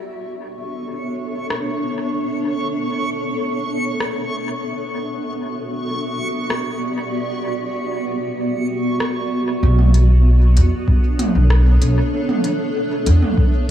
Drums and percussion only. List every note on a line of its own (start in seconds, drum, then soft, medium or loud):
1.50 cross-stick medium
4.00 cross-stick medium
6.50 cross-stick medium
9.00 cross-stick medium
9.79 mid tom medium
9.94 closed hi-hat medium
10.57 closed hi-hat medium
10.88 kick loud
11.19 closed hi-hat medium
11.19 mid tom medium
11.50 cross-stick medium
11.82 closed hi-hat medium
12.29 mid tom medium
12.44 closed hi-hat medium
13.06 closed hi-hat medium
13.22 mid tom medium
13.38 kick loud